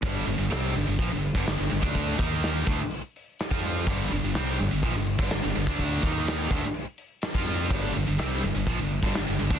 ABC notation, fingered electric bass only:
X:1
M:4/4
L:1/16
Q:1/4=125
K:Gm
V:1 name="Fingered electric bass" clef=bass
G,,,2 G,,, G,,, C,,2 G,,, G,,, B,,, G,,,2 G,,, G,,, G,,, G,,, D,,- | D,,2 E,,4 D,, z6 F,,3 | G,,,2 G,,, G,,, C,,2 G,,, G,,, B,,, G,,,2 G,,, G,,, G,,, G,,, z | z2 E,,4 D,, z6 F,,3 |
G,,,2 G,,, G,,, C,,2 G,,, G,,, B,,, G,,,2 G,,, G,,, G,,, G,,, D,, |]